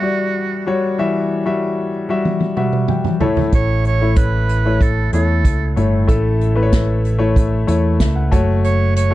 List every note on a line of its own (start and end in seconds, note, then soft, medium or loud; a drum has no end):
0.00 0.99 E3 medium
0.00 0.02 G3 medium
0.00 0.61 G3 medium
0.00 0.02 F#4 medium
0.00 0.66 F#4 medium
0.00 0.62 F#4 soft
0.00 0.62 D5 medium
0.00 0.99 E5 medium
0.67 0.96 G3 medium
0.67 0.96 F#4 medium
0.67 0.96 C#5 medium
0.98 1.90 E3 medium
0.98 1.43 G3 medium
0.98 1.43 F#4 medium
0.98 1.43 E5 medium
1.46 2.05 G3 medium
1.46 2.05 F#4 medium
1.46 2.06 E5 medium
2.09 2.54 G3 medium
2.09 2.54 F#4 medium
2.09 2.55 E5 medium
2.25 high tom soft
2.40 high tom soft
2.57 3.17 G3 medium
2.57 3.17 F#4 medium
2.57 3.17 E5 medium
2.57 2.87 F#5 medium
2.57 mid tom medium
2.73 mid tom soft
2.88 3.19 G5 medium
2.88 mid tom medium
3.04 mid tom medium
3.20 4.13 A2 medium
3.20 3.95 A3 medium
3.20 3.96 E4 medium
3.20 3.96 C#5 medium
3.20 3.51 A5 medium
3.20 floor tom medium
3.37 floor tom medium
3.52 5.08 A1 medium
3.52 3.83 C#5 medium
3.52 kick medium
3.52 closed hi-hat medium
3.85 4.19 C#5 medium
3.85 closed hi-hat soft
4.01 4.61 A3 medium
4.01 4.61 E4 medium
4.01 4.61 C#5 medium
4.16 4.83 B4 medium
4.16 kick loud
4.16 closed hi-hat medium
4.49 closed hi-hat medium
4.66 5.10 A3 medium
4.66 5.10 E4 medium
4.66 5.10 C#5 medium
4.81 5.13 A4 medium
4.81 kick medium
4.81 closed hi-hat medium
5.13 5.45 E2 medium
5.13 5.73 A3 medium
5.13 5.73 E4 soft
5.13 5.73 A4 medium
5.13 5.73 C#5 medium
5.13 closed hi-hat medium
5.45 5.74 C#2 medium
5.45 kick medium
5.45 closed hi-hat medium
5.76 6.06 G1 medium
5.76 6.68 A2 soft
5.76 6.06 A3 medium
5.76 6.06 E4 medium
5.76 6.07 C#5 medium
5.76 closed hi-hat medium
6.07 7.64 A1 medium
6.07 6.53 A3 medium
6.07 6.53 E4 medium
6.07 6.53 A4 medium
6.07 kick medium
6.07 closed hi-hat medium
6.41 closed hi-hat medium
6.55 7.16 A3 medium
6.55 7.16 E4 medium
6.55 6.63 B4 medium
6.63 7.18 C#5 medium
6.72 kick medium
6.72 snare medium
6.72 closed hi-hat medium
7.05 closed hi-hat medium
7.19 7.64 A3 medium
7.19 7.64 E4 medium
7.19 7.64 C#5 medium
7.36 kick loud
7.36 closed hi-hat medium
7.67 7.98 E2 medium
7.67 8.27 A3 medium
7.67 8.27 E4 medium
7.67 8.28 C#5 medium
7.67 closed hi-hat medium
8.00 8.30 C#2 medium
8.00 8.15 E5 medium
8.00 kick medium
8.00 snare medium
8.00 closed hi-hat medium
8.16 8.31 F#5 medium
8.31 9.14 F#1 medium
8.31 9.06 A3 medium
8.31 9.07 F#4 medium
8.31 9.07 C#5 medium
8.31 8.61 A5 medium
8.31 kick medium
8.31 closed hi-hat medium
8.64 8.94 C#5 medium
8.64 closed hi-hat medium
8.96 9.14 C#5 medium
8.96 closed hi-hat medium
9.10 9.14 A3 medium
9.10 9.14 F#4 medium